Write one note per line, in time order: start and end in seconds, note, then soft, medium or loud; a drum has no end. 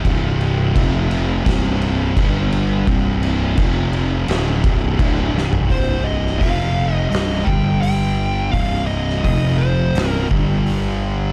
0.05 0.71 C1 loud
0.05 0.74 C2 medium
0.05 0.74 G2 loud
0.05 0.73 C3 loud
0.05 kick medium
0.05 crash medium
0.41 crash medium
0.74 1.42 F1 medium
0.74 1.44 F2 medium
0.74 1.44 C3 loud
0.74 1.44 F3 loud
0.74 kick loud
0.74 crash medium
1.11 crash medium
1.45 2.13 C1 medium
1.45 2.15 C2 medium
1.45 2.14 G2 medium
1.45 2.15 C3 loud
1.45 kick loud
1.45 crash medium
1.49 snare loud
1.82 crash medium
2.16 2.83 G1 medium
2.16 2.86 G2 loud
2.16 2.86 D3 loud
2.16 2.86 G3 loud
2.16 kick loud
2.16 crash medium
2.52 crash medium
2.87 3.54 C1 medium
2.87 3.56 C2 medium
2.87 3.57 G2 loud
2.87 3.56 C3 loud
2.87 kick loud
2.87 crash medium
3.23 crash medium
3.57 4.24 F1 loud
3.57 4.27 F2 medium
3.57 4.27 C3 loud
3.57 4.27 F3 loud
3.57 kick loud
3.57 crash medium
3.93 crash medium
4.28 4.61 D1 loud
4.28 4.63 D2 medium
4.28 4.63 A2 medium
4.28 4.63 D3 loud
4.28 snare loud
4.28 crash medium
4.63 4.97 C1 medium
4.63 4.98 C2 medium
4.63 4.98 G2 medium
4.63 4.98 C3 loud
4.63 kick loud
4.63 crash medium
4.99 5.32 D1 medium
4.99 5.33 D2 loud
4.99 5.33 A2 loud
4.99 5.34 D3 loud
4.99 kick loud
4.99 crash medium
5.34 5.67 C1 loud
5.34 5.68 C2 medium
5.34 5.68 G2 medium
5.34 5.68 C3 loud
5.34 snare medium
5.53 floor tom loud
5.69 6.37 C1 medium
5.69 6.41 C2 medium
5.69 6.41 G2 medium
5.69 6.41 C3 medium
5.69 6.07 C5 medium
5.69 kick medium
5.69 open hi-hat soft
6.04 6.39 D#5 medium
6.27 snare soft
6.39 7.08 F1 medium
6.39 7.10 F2 medium
6.39 7.10 C3 loud
6.39 7.11 F3 loud
6.39 6.94 F5 medium
6.39 kick loud
6.39 open hi-hat medium
6.94 7.10 D#5 medium
7.10 7.45 C1 medium
7.10 7.45 C2 medium
7.10 7.45 G2 medium
7.10 7.46 C3 medium
7.10 7.47 D#5 medium
7.10 open hi-hat medium
7.15 snare loud
7.45 8.50 G1 medium
7.45 8.51 G2 medium
7.45 8.52 D3 medium
7.45 8.52 G3 loud
7.45 7.81 G5 loud
7.45 kick loud
7.82 8.49 G5 loud
7.82 open hi-hat medium
8.51 9.21 C1 medium
8.51 9.23 C2 medium
8.51 9.23 G2 medium
8.51 9.22 C3 loud
8.51 8.85 F5 loud
8.51 kick medium
8.51 open hi-hat medium
8.86 9.23 D#5 medium
9.10 snare soft
9.23 9.92 F1 loud
9.23 9.94 F2 loud
9.23 9.94 C3 loud
9.23 9.94 F3 loud
9.23 9.61 D#5 medium
9.23 kick loud
9.23 open hi-hat medium
9.58 10.09 C5 medium
9.95 10.28 C1 loud
9.95 10.29 C2 medium
9.95 10.28 G2 medium
9.95 10.30 C3 medium
9.95 snare loud
9.95 open hi-hat medium
10.09 10.26 A#4 medium
10.29 11.32 G1 medium
10.29 11.32 G2 medium
10.29 11.32 D3 loud
10.29 11.32 G3 loud
10.29 kick loud
10.66 open hi-hat medium